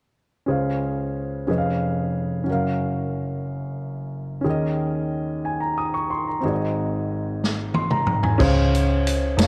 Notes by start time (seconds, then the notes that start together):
0.46 C#2 C#3 C#4 G#4 C5
0.50 F5
1.47 F1 F2 C#4 G#4 B4 D#5
1.58 F5
2.44 F#1 C#4 F#4
2.48 F#2 A#4
2.52 F5
4.41 C#4 G#4
4.45 D#2 D#3 A#4
4.50 D#5
5.45 G#5
5.60 A#5
5.78 D#6
5.94 C#6
6.10 C6
6.28 A#5
6.41 G#1 G#2 C4 F#4
6.45 G#4 D5
6.55 D#5
7.44 snare
7.74 C6, high tom
7.91 A#5, mid tom
8.07 mid tom
8.23 G#5, floor tom
8.38 C#2 C#3 C#4 G#4 C5, kick, crash
8.42 F5
8.75 closed hi-hat
9.07 closed hi-hat
9.37 F1 D#4 A4 C#5, snare, closed hi-hat
9.41 F5